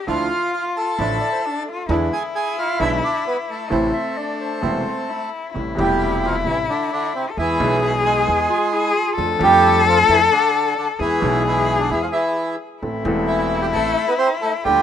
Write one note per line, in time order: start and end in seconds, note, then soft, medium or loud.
0.07 0.27 D2 medium
0.07 0.27 D3 medium
0.07 0.27 F3 medium
0.07 0.28 F3 medium
0.07 0.27 A3 medium
0.07 0.28 D4 medium
0.07 0.27 E4 medium
0.07 0.28 E4 medium
0.07 1.00 F4 medium
0.07 0.51 F4 medium
0.07 0.50 F5 medium
0.53 0.65 F4 medium
0.53 0.63 F5 medium
0.76 1.63 A4 medium
0.76 1.63 A5 medium
0.99 1.18 A1 medium
0.99 1.18 A2 medium
0.99 1.18 D3 medium
0.99 1.18 F3 medium
0.99 1.18 A3 medium
0.99 1.19 D4 medium
0.99 1.47 E4 medium
0.99 1.18 E4 medium
0.99 1.19 E4 medium
1.20 1.31 D5 medium
1.32 1.43 C5 medium
1.43 1.70 D4 medium
1.43 1.97 A4 medium
1.68 1.89 F4 medium
1.89 2.08 E2 medium
1.89 2.09 E2 medium
1.89 2.08 D3 medium
1.89 2.08 E3 medium
1.89 2.08 G#3 medium
1.89 2.09 G#3 medium
1.89 2.08 B3 medium
1.89 2.08 D4 medium
1.89 3.72 E4 medium
1.89 2.09 E4 medium
2.13 2.23 G#4 medium
2.13 2.23 G#5 medium
2.35 2.56 G#4 medium
2.35 2.58 G#5 medium
2.58 2.79 F4 medium
2.58 2.79 F5 medium
2.79 2.99 B1 medium
2.79 2.99 B2 medium
2.79 2.99 D3 medium
2.79 2.99 G#3 medium
2.79 2.99 B3 medium
2.79 2.99 D4 medium
2.79 2.99 E4 medium
2.79 2.91 E4 medium
2.79 2.99 E4 medium
2.79 2.91 E5 medium
3.04 3.25 D4 medium
3.04 3.25 D5 medium
3.27 3.37 B3 medium
3.27 3.37 B4 medium
3.50 5.29 A3 medium
3.50 5.30 A4 medium
3.70 3.90 A1 medium
3.70 3.91 A1 medium
3.70 3.90 A2 medium
3.70 3.90 C3 medium
3.70 3.90 E3 medium
3.70 3.90 A3 medium
3.70 4.19 C4 medium
3.70 3.90 C4 medium
3.70 3.90 E4 medium
3.93 4.19 E5 medium
4.17 4.63 D4 medium
4.17 4.40 D5 medium
4.41 5.29 C5 medium
4.62 4.82 E1 medium
4.62 4.82 E2 medium
4.62 4.82 C3 medium
4.62 4.82 E3 medium
4.62 4.82 A3 soft
4.62 4.82 A3 medium
4.62 5.11 C4 medium
4.62 4.82 C4 medium
4.62 4.82 E4 medium
5.09 5.53 E4 medium
5.54 5.74 A1 medium
5.54 5.75 A1 medium
5.54 5.74 A2 medium
5.54 5.74 C3 soft
5.54 5.74 G3 soft
5.54 5.74 A3 soft
5.54 7.32 E4 medium
5.54 5.74 E4 medium
5.75 6.43 E1 medium
5.75 6.43 E2 medium
5.75 6.42 C3 medium
5.75 6.42 G3 medium
5.75 6.20 G3 medium
5.75 6.43 A3 medium
5.79 6.44 E4 medium
5.79 6.26 G4 medium
6.25 6.35 F3 medium
6.25 6.36 F4 medium
6.45 6.65 A1 medium
6.45 6.66 A1 medium
6.45 6.65 A2 medium
6.45 6.65 C3 soft
6.45 6.58 E3 medium
6.45 6.65 G3 soft
6.45 6.65 A3 soft
6.45 6.65 E4 soft
6.45 6.58 E4 medium
6.69 6.90 D3 medium
6.69 6.91 D4 medium
6.92 7.13 D3 medium
6.92 7.13 D4 medium
7.15 7.25 C3 medium
7.15 7.25 C4 medium
7.30 7.39 A4 medium
7.37 7.56 E2 medium
7.37 7.56 E3 medium
7.37 7.80 E3 medium
7.37 7.56 G#3 soft
7.37 7.56 B3 soft
7.37 7.80 E4 medium
7.37 8.71 G#4 medium
7.37 7.57 G#4 medium
7.58 8.24 B1 medium
7.58 8.24 B2 medium
7.58 8.23 E3 medium
7.58 8.24 G#3 medium
7.58 8.25 B3 medium
7.58 8.25 G#4 medium
7.82 7.93 E3 medium
7.82 7.92 E4 medium
8.05 8.92 G#3 medium
8.05 8.92 G#4 medium
8.27 8.46 E2 medium
8.27 8.47 E2 medium
8.27 8.46 E3 medium
8.27 8.46 G#3 soft
8.27 8.47 B3 soft
8.27 8.47 G#4 medium
8.49 8.74 F4 medium
8.72 8.95 E4 medium
8.72 9.15 G#4 loud
8.94 9.29 F4 medium
9.16 9.37 F2 medium
9.16 9.37 F3 medium
9.16 9.37 A3 soft
9.16 9.37 D4 soft
9.16 11.01 A4 loud
9.16 9.37 A4 medium
9.39 10.05 F2 medium
9.39 10.05 F3 medium
9.39 9.84 G3 medium
9.39 10.05 A3 medium
9.39 10.06 D4 medium
9.43 9.84 G4 loud
9.43 10.06 A4 medium
9.88 9.98 F3 medium
9.88 9.99 F4 medium
10.09 10.28 F2 medium
10.09 10.20 E3 medium
10.09 10.28 F3 medium
10.09 10.28 A3 soft
10.09 10.28 D4 soft
10.09 10.20 E4 medium
10.09 10.28 A4 soft
10.32 10.74 D3 medium
10.32 10.74 D4 medium
10.78 10.88 D3 medium
10.78 10.88 D4 medium
10.99 11.18 E2 medium
10.99 11.19 E2 medium
10.99 11.18 E3 medium
10.99 11.43 E3 medium
10.99 11.18 G#3 soft
10.99 11.18 B3 soft
10.99 11.43 E4 medium
10.99 12.60 G#4 medium
10.99 11.19 G#4 soft
11.20 11.87 B1 medium
11.20 11.87 B2 medium
11.20 11.86 E3 medium
11.20 11.87 G#3 medium
11.20 11.87 B3 medium
11.20 11.88 G#4 medium
11.47 11.78 E3 medium
11.47 11.78 E4 medium
11.79 11.90 D3 medium
11.79 11.90 D4 medium
11.90 12.10 E2 medium
11.90 12.10 E3 medium
11.90 12.02 E3 medium
11.90 12.10 G#3 soft
11.90 12.10 B3 soft
11.90 12.01 E4 medium
11.90 12.10 G#4 soft
12.02 12.08 F3 medium
12.02 12.07 F4 medium
12.12 12.56 E3 medium
12.12 12.56 E4 medium
12.82 13.02 A1 medium
12.82 13.02 A2 medium
12.82 13.02 E3 soft
12.82 13.02 A3 soft
12.82 13.02 C4 soft
12.82 14.65 E4 medium
12.82 13.02 A4 medium
13.03 13.70 E1 medium
13.03 13.71 E2 medium
13.03 13.69 E3 medium
13.03 13.70 A3 medium
13.03 13.71 C4 medium
13.03 13.71 A4 medium
13.27 13.60 E3 medium
13.27 13.60 E4 medium
13.61 13.67 G3 medium
13.61 13.67 G4 medium
13.73 13.93 A1 medium
13.73 13.94 A1 medium
13.73 13.94 A2 medium
13.73 13.94 E3 soft
13.73 14.06 A3 medium
13.73 13.94 A3 soft
13.73 13.94 C4 soft
13.73 14.09 A4 medium
13.73 13.94 A4 medium
14.08 14.14 B3 medium
14.08 14.13 B4 medium
14.18 14.29 C4 medium
14.18 14.29 C5 medium
14.42 14.53 A3 medium
14.42 14.52 A4 medium
14.64 14.82 D2 medium
14.64 14.82 D3 medium
14.64 14.82 F3 soft
14.64 14.82 G3 medium
14.64 14.82 A3 soft
14.64 14.82 D4 soft
14.64 14.82 F4 medium
14.64 14.82 G4 medium
14.64 14.82 A4 medium